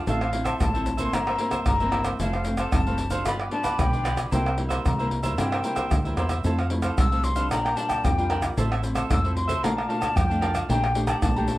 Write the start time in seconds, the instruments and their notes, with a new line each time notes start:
0.07 fingered electric bass A1, nylon-string guitar A2 F3 C4 E4, cavaquinho F4 A4 C5 E5, flute F5, pandeiro, shaker, surdo
0.20 cavaquinho A4 C5 E5, pandeiro, tamborim, shaker
0.32 nylon-string guitar F3 C4 E4, muted cavaquinho stroke, pandeiro
0.44 cavaquinho A4 C5 E5, flute A5, pandeiro, tamborim, shaker, surdo
0.60 fingered electric bass A1, nylon-string guitar A2, flute A5, pandeiro, tamborim, shaker, surdo
0.74 nylon-string guitar F3 C4 E4, cavaquinho A4 C5 E5, pandeiro, shaker
0.86 muted cavaquinho stroke, pandeiro, shaker, surdo
0.97 nylon-string guitar E3 A#3 C4, cavaquinho A4 C5 E5, flute C6, pandeiro, shaker, surdo
1.13 fingered electric bass G1, nylon-string guitar G2, cavaquinho E4 A#4 C5 E5, flute A#5, pandeiro, tamborim, shaker, surdo
1.27 cavaquinho A#4 C5 E5, pandeiro, tamborim, shaker
1.39 nylon-string guitar E3 A#3 C4, cavaquinho E4 A#4 C5 E5, pandeiro
1.51 cavaquinho A#4 C5 E5, pandeiro, tamborim, shaker, surdo
1.66 fingered electric bass G1, nylon-string guitar G2, flute A#5, pandeiro, tamborim, shaker, surdo
1.80 nylon-string guitar E3 A#3 C4, cavaquinho A#4 C5 E5, pandeiro, shaker
1.92 cavaquinho E4 A#4 C5 E5, pandeiro, tamborim
2.05 cavaquinho A#4 C5 E5, pandeiro, tamborim, shaker, surdo
2.20 fingered electric bass F1, nylon-string guitar F2 E3 A3 C4, cavaquinho E4 A4 C5 F5, flute F5, pandeiro, shaker, surdo
2.33 cavaquinho A4 C5 F5, pandeiro, tamborim, shaker
2.45 nylon-string guitar E3 A3 C4, muted cavaquinho stroke, pandeiro, shaker
2.57 cavaquinho A4 C5 F5, flute A5, pandeiro, tamborim, shaker, surdo
2.72 fingered electric bass F#1, nylon-string guitar C3, flute A5, pandeiro, tamborim, shaker, surdo
2.87 nylon-string guitar E3 A3 C4, cavaquinho A4 C5 F5, pandeiro, shaker
2.98 muted cavaquinho stroke, pandeiro, shaker
3.11 nylon-string guitar F3 B3 D4, cavaquinho A4 C5 F5, flute C6, pandeiro, shaker, surdo
3.25 fingered electric bass G1, nylon-string guitar G2, cavaquinho F4 G4 B4 D5, flute B5, pandeiro, tamborim, shaker, surdo
3.39 cavaquinho G4 B4 D5, pandeiro, tamborim, shaker
3.51 nylon-string guitar F3 B3 D4, cavaquinho F4 G4 B4 D5, flute A5, pandeiro
3.63 cavaquinho G4 B4 D5, pandeiro, tamborim, shaker, surdo
3.79 fingered electric bass B1, nylon-string guitar D3, flute G5, pandeiro, tamborim, shaker, surdo
3.92 nylon-string guitar F3 B3 D4, cavaquinho G4 B4 D5, pandeiro, shaker
4.04 cavaquinho F4 G4 B4 D5, pandeiro, tamborim, shaker
4.16 cavaquinho G4 B4 D5, pandeiro, tamborim, shaker, surdo
4.31 fingered electric bass C2, nylon-string guitar C3 G3 A#3 E4, cavaquinho E4 A#4 C5 E5, flute G5, pandeiro, shaker, surdo
4.45 cavaquinho A#4 C5 E5, pandeiro, tamborim, shaker
4.57 nylon-string guitar G3 A#3 E4, muted cavaquinho stroke, pandeiro
4.68 cavaquinho A#4 C5 E5, pandeiro, tamborim, shaker, surdo
4.85 fingered electric bass C2, nylon-string guitar G2, flute A#5, pandeiro, tamborim, shaker, surdo
4.98 nylon-string guitar G3 A#3 E4, cavaquinho A#4 C5 E5, pandeiro, shaker
5.10 muted cavaquinho stroke, pandeiro, surdo
5.23 nylon-string guitar G3 A#3 E4, cavaquinho A#4 C5 E5, pandeiro, shaker, surdo
5.37 fingered electric bass G2, nylon-string guitar C3 G3 A#3 E4, cavaquinho E4 A#4 C5 E5, flute G5, pandeiro, tamborim, shaker, surdo
5.52 cavaquinho A#4 C5 E5, pandeiro, tamborim, shaker
5.63 nylon-string guitar G3 A#3 E4, cavaquinho E4 A#4 C5 E5, pandeiro, shaker
5.76 cavaquinho A#4 C5 E5, pandeiro, tamborim, shaker, surdo
5.91 fingered electric bass D2, nylon-string guitar G2, pandeiro, tamborim, shaker, surdo
6.05 nylon-string guitar G3 A#3 E4, cavaquinho A#4 C5 E5, pandeiro, shaker
6.17 fingered electric bass E2, cavaquinho E4 A#4 C5 E5, pandeiro, tamborim, shaker
6.29 cavaquinho A#4 C5 E5, pandeiro, tamborim, shaker, surdo
6.44 fingered electric bass F2, nylon-string guitar F3 A3 C4 E4, cavaquinho E4 A4 C5 F5, pandeiro, shaker, surdo
6.59 cavaquinho A4 C5 F5, pandeiro, tamborim, shaker
6.70 nylon-string guitar A3 C4 E4, muted cavaquinho stroke, pandeiro
6.82 cavaquinho A4 C5 F5, pandeiro, tamborim, shaker, surdo
6.98 fingered electric bass C2, nylon-string guitar C3, flute E6, pandeiro, tamborim, shaker, surdo
7.12 nylon-string guitar A3 C4 E4, cavaquinho A4 C5 F5, pandeiro, shaker
7.24 flute C6, muted cavaquinho stroke, pandeiro, shaker, surdo
7.36 nylon-string guitar G3 D4 F4, cavaquinho A4 C5 F5, pandeiro, shaker, surdo
7.51 fingered electric bass A#1, nylon-string guitar A#2, cavaquinho D4 A#4 D5 G5, flute A#5, pandeiro, tamborim, shaker, surdo
7.65 cavaquinho A#4 D5 G5, pandeiro, tamborim, shaker
7.76 nylon-string guitar G3 D4 F4, cavaquinho D4 A#4 D5 G5, flute A5, pandeiro, shaker
7.89 cavaquinho A#4 D5 G5, pandeiro, tamborim, shaker, surdo
8.04 fingered electric bass F2, nylon-string guitar F3, flute G5, pandeiro, tamborim, shaker, surdo
8.18 nylon-string guitar G3 D4 F4, cavaquinho A#4 D5 G5, pandeiro, shaker
8.29 cavaquinho D4 A#4 D5 G5, pandeiro, tamborim
8.41 cavaquinho A#4 D5 G5, pandeiro, tamborim, shaker, surdo
8.57 fingered electric bass A1, nylon-string guitar A2 F3 C4 E4, cavaquinho F4 A4 C5 E5, pandeiro, shaker, surdo
8.71 cavaquinho A4 C5 E5, pandeiro, tamborim, shaker
8.82 nylon-string guitar F3 C4 E4, muted cavaquinho stroke, pandeiro, shaker
8.95 cavaquinho A4 C5 E5, pandeiro, tamborim, shaker, surdo
9.10 fingered electric bass F2, nylon-string guitar A2, flute E6, pandeiro, tamborim, shaker, surdo
9.24 nylon-string guitar F3 C4 E4, cavaquinho A4 C5 E5, pandeiro, shaker
9.36 flute C6, muted cavaquinho stroke, pandeiro
9.47 cavaquinho A4 C5 E5, pandeiro, shaker, surdo
9.63 fingered electric bass A#1, nylon-string guitar A#2 A3 D4 F4, cavaquinho A#4 D5 F5 A5, flute A#5, pandeiro, tamborim, shaker, surdo
9.77 cavaquinho D5 F5 A5, pandeiro, tamborim, shaker
9.88 nylon-string guitar A3 D4 F4, cavaquinho A#4 D5 F5 A5, flute A5, pandeiro
10.00 cavaquinho D5 F5 A5, pandeiro, tamborim, shaker, surdo
10.16 fingered electric bass F2, nylon-string guitar F3, flute G5, pandeiro, tamborim, shaker, surdo
10.30 nylon-string guitar A3 D4 F4, cavaquinho D5 F5 A5, pandeiro, shaker
10.41 cavaquinho A#4 D5 F5 A5, pandeiro, tamborim
10.54 cavaquinho D5 F5 A5, pandeiro, tamborim, shaker, surdo
10.69 fingered electric bass A#1, nylon-string guitar A#2 A3 D4 G4, cavaquinho A4 D5 G5 A#5, flute G5, pandeiro, shaker, surdo
10.83 cavaquinho D5 G5 A#5, pandeiro, tamborim, shaker
10.95 nylon-string guitar A3 D4 G4, muted cavaquinho stroke, pandeiro, shaker
11.07 cavaquinho D5 G5 A#5, flute A5, pandeiro, tamborim, shaker, surdo
11.22 fingered electric bass A#1, nylon-string guitar A#2, flute A5, pandeiro, tamborim, shaker, surdo
11.36 nylon-string guitar A3 D4 G4, cavaquinho D5 G5 A#5, pandeiro, shaker
11.48 muted cavaquinho stroke, pandeiro, shaker, surdo